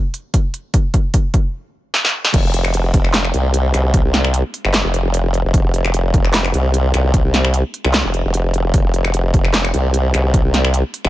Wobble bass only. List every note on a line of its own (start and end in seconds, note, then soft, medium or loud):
2.34 2.92 F1 loud
2.94 3.32 F1 loud
3.34 3.72 C2 medium
3.74 4.03 C2 medium
4.05 4.43 C2 loud
4.65 4.83 F#1 loud
4.85 5.43 F1 loud
5.45 5.52 F1 medium
5.54 6.12 F1 loud
6.14 6.52 F1 loud
6.54 6.92 C2 loud
6.94 7.23 C2 loud
7.25 7.63 C2 loud
7.85 8.03 C2 loud
8.05 8.23 F1 loud
8.25 8.72 F1 loud
8.74 9.32 F1 loud
9.34 9.72 F1 loud
9.74 10.12 C2 medium
10.14 10.43 C2 medium
10.45 10.83 C2 loud
11.05 11.09 F#1 loud